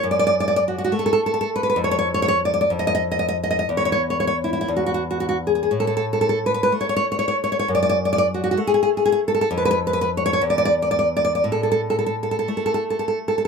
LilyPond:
\new Staff \with { instrumentName = "Nylon-string guitar" } { \time 6/8 \key fis \minor \tempo 4. = 62 << { r32 d''32 d''32 d''32 r32 d''32 d''32 d''32 r32 fis'32 fis'32 fis'32 r32 a'32 a'32 a'32 r32 a'32 a'32 a'32 r32 b'32 b'32 b'32 | r32 cis''32 cis''32 cis''32 r32 cis''32 cis''32 cis''32 r32 d''32 d''32 d''32 r32 dis''32 dis''32 dis''32 r32 dis''32 dis''32 dis''32 r32 dis''32 dis''32 dis''32 | r32 cis''32 cis''32 cis''32 r32 cis''32 cis''32 cis''32 r32 e'32 e'32 e'32 r32 fis'32 fis'32 fis'32 r32 fis'32 fis'32 fis'32 r32 gis'32 gis'32 gis'32 | r32 a'32 a'32 a'32 r32 a'32 a'32 a'32 r32 b'32 b'32 b'32 r32 cis''32 cis''32 cis''32 r32 cis''32 cis''32 cis''32 r32 cis''32 cis''32 cis''32 |
r32 d''32 d''32 d''32 r32 d''32 d''32 d''32 r32 fis'32 fis'32 fis'32 r32 gis'32 gis'32 gis'32 r32 gis'32 gis'32 gis'32 r32 a'32 a'32 a'32 | r32 b'32 b'32 b'32 r32 b'32 b'32 b'32 r32 cis''32 cis''32 cis''32 r32 d''32 d''32 d''32 r32 d''32 d''32 d''32 r32 d''32 d''32 d''32 | r32 a'32 a'32 a'32 r32 a'32 a'32 a'32 r32 a'32 a'32 a'32 r32 a'32 a'32 a'32 r32 a'32 a'32 a'32 r32 a'32 a'32 r32 | } \\ { fis,4. a4. | f,4. f,4. | e,4. e,4. | a,4. a4. |
fis,4. a4. | f,4. e,4. | a,4. a4. | } >> }